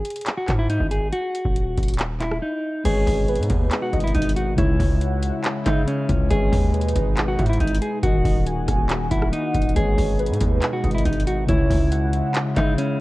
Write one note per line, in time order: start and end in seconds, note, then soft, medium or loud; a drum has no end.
0.00 0.33 G#4 loud
0.05 closed hi-hat medium
0.10 closed hi-hat medium
0.16 closed hi-hat medium
0.21 closed hi-hat medium
0.26 clap loud
0.26 closed hi-hat medium
0.37 0.54 F#4 medium
0.48 0.79 G#2 loud
0.48 kick medium
0.48 clap medium
0.48 closed hi-hat medium
0.59 0.67 E4 medium
0.70 0.86 D#4 medium
0.70 closed hi-hat medium
0.80 1.11 G#1 loud
0.80 kick medium
0.91 1.08 G#4 medium
0.91 closed hi-hat medium
1.13 1.95 F#4 loud
1.13 closed hi-hat medium
1.35 closed hi-hat medium
1.45 1.76 D#1 loud
1.45 kick medium
1.56 closed hi-hat medium
1.77 2.40 D#1 loud
1.77 kick medium
1.77 closed hi-hat medium
1.83 closed hi-hat medium
1.88 closed hi-hat medium
1.94 closed hi-hat medium
1.99 clap loud
1.99 closed hi-hat medium
2.20 2.37 E4 medium
2.20 clap medium
2.20 closed hi-hat medium
2.31 cross-stick medium
2.42 2.83 D#4 medium
2.84 3.06 G#1 loud
2.84 4.56 B2 medium
2.84 4.54 G#3 medium
2.84 7.99 G#3 medium
2.84 4.56 D#4 medium
2.84 4.54 G#4 medium
2.84 3.79 G#4 loud
2.84 4.55 B4 medium
2.84 3.26 C#5 loud
2.84 4.55 D#5 medium
2.84 kick loud
2.84 closed hi-hat medium
2.84 crash loud
3.07 3.41 G#1 loud
3.07 kick loud
3.07 open hi-hat medium
3.28 3.89 B4 medium
3.28 closed hi-hat soft
3.36 3.50 G#2 loud
3.36 closed hi-hat medium
3.43 closed hi-hat medium
3.50 3.71 D#2 loud
3.50 kick loud
3.50 closed hi-hat medium
3.71 clap loud
3.71 closed hi-hat medium
3.83 3.99 F#4 medium
3.93 4.14 G#1 loud
3.93 4.14 D#5 medium
3.93 kick medium
3.93 closed hi-hat soft
4.00 4.12 E4 medium
4.00 closed hi-hat medium
4.08 closed hi-hat medium
4.15 4.56 G#1 loud
4.15 4.31 D#4 medium
4.15 kick loud
4.15 closed hi-hat medium
4.22 closed hi-hat medium
4.29 closed hi-hat medium
4.36 4.53 F#4 medium
4.36 closed hi-hat medium
4.56 4.79 C#2 loud
4.56 6.05 C#3 medium
4.56 6.29 C#3 medium
4.56 6.05 G#3 medium
4.56 6.06 E4 medium
4.56 6.29 E4 medium
4.56 5.40 E4 loud
4.56 4.99 C#5 loud
4.56 6.06 C#5 medium
4.56 kick loud
4.56 closed hi-hat medium
4.80 5.31 C#2 loud
4.80 kick loud
4.80 open hi-hat medium
5.01 5.62 F#5 medium
5.01 closed hi-hat medium
5.23 closed hi-hat medium
5.44 clap loud
5.44 closed hi-hat medium
5.66 6.07 C#3 loud
5.66 5.82 D#4 medium
5.66 5.86 E5 medium
5.66 kick medium
5.66 clap medium
5.66 closed hi-hat medium
5.88 6.28 C#4 medium
5.88 closed hi-hat medium
6.08 6.30 C#2 loud
6.08 6.30 C#3 medium
6.08 6.29 G#3 soft
6.08 6.31 E4 soft
6.08 6.31 C#5 medium
6.08 kick medium
6.08 closed hi-hat medium
6.30 6.51 G#1 loud
6.30 8.02 B2 medium
6.30 8.00 G#3 medium
6.30 8.02 D#4 medium
6.30 7.24 G#4 loud
6.30 8.00 G#4 medium
6.30 8.00 B4 medium
6.30 6.71 C#5 loud
6.30 8.01 D#5 medium
6.30 kick loud
6.30 closed hi-hat medium
6.52 6.94 D#2 loud
6.52 kick loud
6.52 open hi-hat medium
6.74 7.35 B4 medium
6.74 closed hi-hat soft
6.81 closed hi-hat medium
6.88 closed hi-hat medium
6.95 7.37 G#1 loud
6.95 kick loud
6.95 closed hi-hat medium
7.17 clap loud
7.17 closed hi-hat medium
7.28 7.44 F#4 medium
7.39 7.59 G#2 loud
7.39 7.59 E5 medium
7.39 kick medium
7.39 closed hi-hat soft
7.46 7.58 E4 medium
7.46 closed hi-hat medium
7.53 closed hi-hat medium
7.60 7.81 G#1 loud
7.60 7.77 D#4 medium
7.60 kick loud
7.60 closed hi-hat medium
7.67 closed hi-hat medium
7.75 closed hi-hat medium
7.82 7.98 G#4 medium
7.82 closed hi-hat medium
8.02 8.24 D#1 loud
8.02 9.72 D#3 medium
8.02 9.74 D#3 medium
8.02 9.74 A#3 medium
8.02 9.73 D#4 medium
8.02 8.86 F#4 loud
8.02 9.74 F#4 medium
8.02 9.73 F#4 medium
8.02 9.73 A#4 medium
8.02 8.44 D#5 loud
8.02 kick loud
8.02 closed hi-hat medium
8.25 8.66 D#1 loud
8.25 kick loud
8.25 open hi-hat medium
8.46 9.07 G#5 medium
8.46 closed hi-hat medium
8.68 9.10 D#1 loud
8.68 kick loud
8.68 cross-stick medium
8.68 closed hi-hat medium
8.89 clap loud
8.89 closed hi-hat medium
9.11 9.32 D#1 loud
9.11 9.28 E4 medium
9.11 9.72 F#5 medium
9.11 kick medium
9.11 closed hi-hat medium
9.22 cross-stick medium
9.33 9.73 D#4 medium
9.33 closed hi-hat medium
9.54 9.75 D#1 loud
9.54 kick medium
9.54 closed hi-hat medium
9.62 closed hi-hat medium
9.69 closed hi-hat soft
9.75 9.97 G#1 loud
9.75 11.47 B2 medium
9.75 11.45 G#3 medium
9.75 11.47 G#3 medium
9.75 11.47 D#4 medium
9.75 11.45 G#4 medium
9.75 10.69 G#4 loud
9.75 11.46 B4 medium
9.75 10.17 C#5 loud
9.75 11.46 D#5 medium
9.75 kick loud
9.75 closed hi-hat medium
9.98 10.31 G#1 loud
9.98 kick loud
9.98 open hi-hat medium
10.19 10.80 B4 medium
10.19 closed hi-hat soft
10.26 10.40 G#2 loud
10.26 closed hi-hat medium
10.34 closed hi-hat medium
10.41 10.62 D#2 loud
10.41 kick medium
10.41 closed hi-hat medium
10.62 clap loud
10.62 closed hi-hat medium
10.73 10.89 F#4 medium
10.84 11.05 G#1 loud
10.84 11.05 D#5 medium
10.84 kick medium
10.84 closed hi-hat soft
10.91 11.03 E4 medium
10.91 closed hi-hat medium
10.98 closed hi-hat medium
11.05 11.47 G#1 loud
11.05 11.22 D#4 medium
11.05 kick loud
11.05 closed hi-hat medium
11.13 closed hi-hat medium
11.20 closed hi-hat medium
11.27 11.43 F#4 medium
11.27 closed hi-hat medium
11.47 11.69 C#2 loud
11.47 12.96 C#3 medium
11.47 13.00 C#3 medium
11.47 12.96 G#3 medium
11.47 13.00 G#3 medium
11.47 12.96 E4 medium
11.47 13.00 E4 medium
11.47 12.31 E4 loud
11.47 11.89 C#5 loud
11.47 12.97 C#5 medium
11.47 kick loud
11.47 closed hi-hat medium
11.70 12.22 C#2 loud
11.70 kick loud
11.70 open hi-hat medium
11.92 12.53 F#5 medium
11.92 closed hi-hat medium
12.13 closed hi-hat medium
12.35 clap loud
12.35 closed hi-hat medium
12.56 12.98 C#3 loud
12.56 12.73 D#4 medium
12.56 12.77 E5 medium
12.56 kick loud
12.56 clap medium
12.56 closed hi-hat medium
12.78 13.00 C#4 medium
12.78 closed hi-hat medium